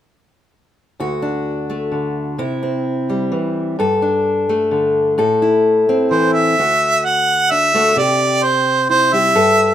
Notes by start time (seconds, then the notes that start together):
1.00 D2 F#4
1.22 D4
1.70 A3
1.92 D3
2.38 C3 E4
2.63 C4
3.10 G3
3.32 E3
3.79 G2 A4
4.02 D4
4.49 A3
4.71 D3
5.18 A2 A4
5.42 E4
5.89 C4
6.11 E3 C5
6.32 E5
6.58 D2 F#4
7.05 F#5
7.51 D4 E5
7.74 A3 D4 F#4
7.96 C3 G4 D5
8.43 C5
8.89 E4 C5
9.13 G3 E4 G4 E5
9.35 G2 A4